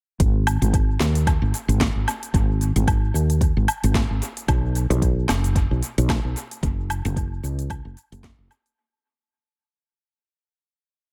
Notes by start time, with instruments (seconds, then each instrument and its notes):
0.20 fretless electric bass G#1, kick, closed hi-hat, shaker
0.47 closed hi-hat, low woodblock, shaker
0.62 fretless electric bass G#1, closed hi-hat, shaker
0.73 kick, closed hi-hat, shaker
1.00 fretless electric bass D#2, snare, shaker
1.15 closed hi-hat, shaker
1.27 kick, closed hi-hat, low woodblock, shaker
1.42 fretless electric bass G#1
1.54 closed hi-hat, shaker
1.68 fretless electric bass G#1, closed hi-hat, shaker
1.80 kick, snare, closed hi-hat, shaker
1.95 fretless electric bass G#1
2.08 closed hi-hat, low woodblock, shaker
2.23 closed hi-hat, shaker
2.34 fretless electric bass G#1, kick, closed hi-hat, shaker
2.61 closed hi-hat, shaker
2.76 fretless electric bass G#1, closed hi-hat, shaker
2.87 kick, closed hi-hat, low woodblock, shaker
3.14 fretless electric bass D#2, shaker
3.30 closed hi-hat, shaker
3.41 kick, closed hi-hat, shaker
3.57 fretless electric bass G#1
3.68 closed hi-hat, low woodblock, shaker
3.84 fretless electric bass G#1, closed hi-hat, shaker
3.95 kick, snare, closed hi-hat, shaker
4.11 fretless electric bass G#1
4.22 closed hi-hat, shaker
4.37 closed hi-hat, shaker
4.48 fretless electric bass B1, kick, closed hi-hat, low woodblock, shaker
4.75 closed hi-hat, shaker
4.90 fretless electric bass B1, closed hi-hat, shaker
5.02 kick, closed hi-hat, shaker
5.29 fretless electric bass F#1, snare, low woodblock, shaker
5.44 closed hi-hat, shaker
5.56 kick, closed hi-hat, shaker
5.71 fretless electric bass B1
5.83 closed hi-hat, shaker
5.98 fretless electric bass B1, closed hi-hat, shaker
6.09 kick, snare, closed hi-hat, low woodblock, shaker
6.25 fretless electric bass B1
6.36 closed hi-hat, shaker
6.51 closed hi-hat, shaker
6.63 fretless electric bass F#1, kick, closed hi-hat, shaker
6.90 closed hi-hat, low woodblock, shaker
7.05 fretless electric bass F#1, closed hi-hat, shaker
7.16 kick, closed hi-hat, shaker
7.43 fretless electric bass C#2, shaker
7.59 closed hi-hat, shaker
7.70 kick, closed hi-hat, low woodblock, shaker
7.85 fretless electric bass F#1
7.97 closed hi-hat, shaker
8.12 fretless electric bass F#1, closed hi-hat, shaker
8.23 kick, snare, closed hi-hat, shaker
8.38 fretless electric bass F#1
8.51 closed hi-hat, low woodblock, shaker
8.66 closed hi-hat, shaker